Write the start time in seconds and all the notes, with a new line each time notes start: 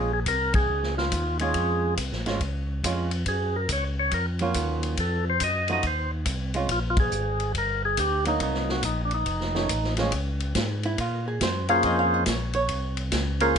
Already playing: A#1 G#4
0.13 G#4
0.26 C2 A#4, kick, hi-hat pedal, ride
0.54 G#4, kick, ride
0.69 C#2
0.83 snare
0.98 F4, snare
1.12 D#2, kick, hi-hat pedal, ride
1.39 G#3 C#4 F4 G#4, ride
1.54 F2, kick, ride
1.97 C2, kick, hi-hat pedal, ride
2.12 A#1, snare
2.26 G#1 G#3 C#4 F4, snare, ride
2.40 C#2, kick, ride
2.83 F2 G#3 C#4 F4, kick, hi-hat pedal, ride
3.11 ride
3.26 F#2 G#4, kick, ride
3.56 A#4
3.69 C#2 C#5, kick, hi-hat pedal, ride
3.99 C#5
4.11 F2 A#4, kick, ride
4.39 F#3 A#3 C#4 F4, ride
4.54 D#2, kick, hi-hat pedal, ride
4.83 ride
4.97 F2 A4, kick, ride
5.30 C5
5.40 F#2 D#5, kick, hi-hat pedal, ride
5.68 F3 A3 D#4 F#4, ride
5.73 D#5
5.83 D#2, kick, ride
5.87 C5
6.26 C2, kick, hi-hat pedal, ride
6.54 G#3 C#4 F4, ride
6.69 A#1 F4, kick, ride
6.90 F4
6.97 G#4, kick, ride
7.12 G#1, hi-hat pedal
7.40 ride
7.54 G1 A#4, kick, ride
7.85 G#4
7.97 D2 G4, kick, hi-hat pedal, ride
8.25 F#3 A#3 D#4, ride
8.40 C2 D#4, kick, ride
8.54 snare
8.69 F#4, snare
8.83 A#1 D#4, kick, hi-hat pedal, ride
9.05 D4
9.11 D#4, ride
9.26 F1, kick, ride
9.41 snare
9.55 D#3 A3 C#4, snare
9.69 A1, kick, hi-hat pedal, ride
9.84 snare
9.97 F3 G#3 C#4, snare, ride
10.12 C#2, kick, ride
10.40 ride
10.55 G#2, kick, snare, hi-hat pedal, ride
10.83 E4, ride
10.98 A#2 F4, kick, ride
11.28 G#4
11.41 F#2 C5, kick, snare, hi-hat pedal, ride
11.69 A#3 C#4 F4 G#4 C5 F5, ride
11.83 F2 D#5, kick, ride
11.99 F5
12.14 D#5
12.26 A#1 C#5, kick, snare, hi-hat pedal, ride
12.53 C#5, ride
12.69 C2, kick, ride
12.97 ride
13.12 C#2, kick, snare, hi-hat pedal, ride
13.40 A#3 C#4 F4 G#4 A#4 C5, ride
13.55 kick